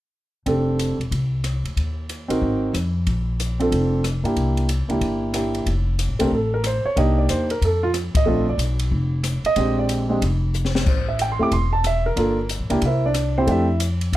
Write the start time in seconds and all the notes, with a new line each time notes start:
0.46 F1 C4 D4 G4 A4, kick, ride
0.79 hi-hat pedal, ride
0.99 E1, ride
1.11 C2, kick, ride
1.44 cross-stick, hi-hat pedal, ride
1.64 D2, ride
1.76 D#2, kick, ride
2.09 hi-hat pedal, ride
2.28 A#1 C4 D#4 F#4 A#4, ride
2.42 G#1, kick
2.73 F2, cross-stick, hi-hat pedal, ride
3.07 A#1, kick, ride
3.40 hi-hat pedal, ride
3.60 C4 D4 F4 A4, ride
3.72 F1, kick, ride
4.04 cross-stick, hi-hat pedal, ride
4.24 G2 A#3 D4 E4 G4, ride
4.36 C2, kick, ride
4.57 ride
4.69 hi-hat pedal, ride
4.88 C#2 A#3 D4 E4 G4, ride
5.01 G1, kick, ride
5.34 A#3 D4 E4 G4, cross-stick, hi-hat pedal, ride
5.55 ride
5.66 F1, kick, ride
5.99 hi-hat pedal, ride
6.09 A1
6.19 C2 A3 C4 D4 G4 A#4, ride
6.31 A1 A4, kick
6.54 A#4
6.64 C5, cross-stick, hi-hat pedal, ride
6.85 C#5, muted upright bass stroke
6.96 C2 A#3 D4 D#4 G4 D#5, kick, ride
7.18 D5
7.29 E2 C5, hi-hat pedal, ride
7.50 A#4, ride
7.61 F2 A4, kick, ride
7.83 F4
7.94 cross-stick, hi-hat pedal, ride
8.15 D#5, muted upright bass stroke, kick, ride
8.26 A#1 A3 C4 D4 F4
8.49 D5
8.58 B1, hi-hat pedal, ride
8.79 ride
8.91 F1, kick
9.24 cross-stick, hi-hat pedal, ride
9.43 D#5, muted upright bass stroke, ride
9.56 A#1 G#3 C4 D4 G4, kick, ride
9.79 D5
9.89 hi-hat pedal, ride
10.09 G#3 C4 D4 G4
10.22 F1, kick, ride
10.54 hi-hat pedal
10.65 snare
10.75 snare
10.86 A1 C5, kick, crash
11.08 E5
11.19 G5, hi-hat pedal, ride
11.32 C6
11.39 E2 A3 C4 E4 G4 D6
11.51 E1 C6, kick, ride
11.73 A5
11.84 E5, cross-stick, hi-hat pedal, ride
12.06 A#4
12.16 G1 A#3 D4 F4 A4, kick, ride
12.49 hi-hat pedal, ride
12.59 A#1
12.70 C#2 A#3 D4 E4 G4, ride
12.82 C2 E5, kick, ride
12.86 E4 A#4 C5
13.06 D4 D5
13.14 cross-stick, hi-hat pedal, ride
13.38 C4 E4 G4 C5
13.46 F2 A3 C4 D4 G4, kick, ride
13.51 E4 E5
13.80 hi-hat pedal, ride
14.01 ride
14.12 C2, kick, ride